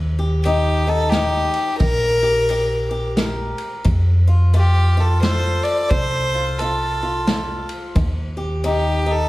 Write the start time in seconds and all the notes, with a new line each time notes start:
Already playing: D#2 D#3
0.19 G4
0.44 G3 D#4 G4, ride
0.87 D#4 A4
1.09 G4, snare, ride
1.14 A#2 D#4
1.54 ride
1.78 A#1 D#3 A#4, kick, ride
2.23 G4
2.49 G3 G4, ride
2.91 G4
3.17 A#2 A#4, snare, ride
3.58 ride
3.84 F2 F3, kick, ride
4.27 F4
4.54 A3 F4 G4, ride
4.97 F4 A4
5.22 C3 A4 C5, snare, ride
5.63 D5, ride
5.89 C2 F3 C5, kick, ride
6.34 F4
6.58 A3 F4 A4, ride
7.03 F4
7.27 C3 F4, snare, ride
7.69 ride
7.95 D#2 D#3, kick, ride
8.37 G4
8.64 G3 D#4 G4, ride
9.06 D#4
9.11 A4